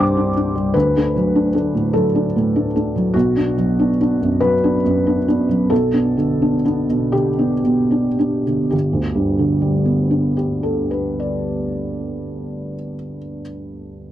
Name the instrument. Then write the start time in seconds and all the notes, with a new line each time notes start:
felt piano
Already playing: G2 G3 D4 G4 C5 G5
0.00 D6
0.17 D4
0.36 D4
0.55 G3
0.74 D2 B4
0.97 A3 D4
1.16 F#3
1.35 A3 D4
1.54 A3 D4
1.75 A2
1.93 F#3 A4
2.15 A3 D4
2.36 A2
2.56 A3 D4
2.75 A3 D4
2.96 F#3
3.14 B1 F#4
3.37 B3 D4
3.57 F#3
3.79 B3 D4
4.01 B3 D4
4.22 F#2
4.40 F#3 B4
4.64 B3 D4
4.86 F#2
5.07 B3 D4
5.28 B3 D4
5.49 F#3
5.70 B1 A4
5.94 B3 D4
6.17 D3
6.42 B3 D4
6.65 B3 D4
6.89 B2
7.12 D3 G4
7.39 B3 D4
7.64 B2
7.91 B3 D4
8.19 B3 D4
8.47 D3
8.70 G1 G4
8.93 D2
9.15 G2
9.39 D3
9.62 G3
9.85 B3
10.11 D4
10.37 G4
10.63 A4
10.91 B4
11.20 D5